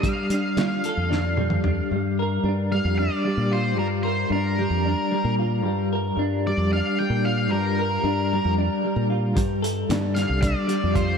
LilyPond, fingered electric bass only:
\new Staff \with { instrumentName = "Fingered electric bass" } { \clef bass \time 7/8 \key g \minor \tempo 4 = 113 r8 g16 r16 g8 r16 f,4.~ f,16 | g,4 g,8. f,8 r8 bes,8. | g,4 g,8. f,8 r8 bes,8. | g,4 g,8. f,8 r8 bes,8. |
g,4 g,8. f,8 r8 bes,8. | g,4 g,8. c,8 r8 f,8. | }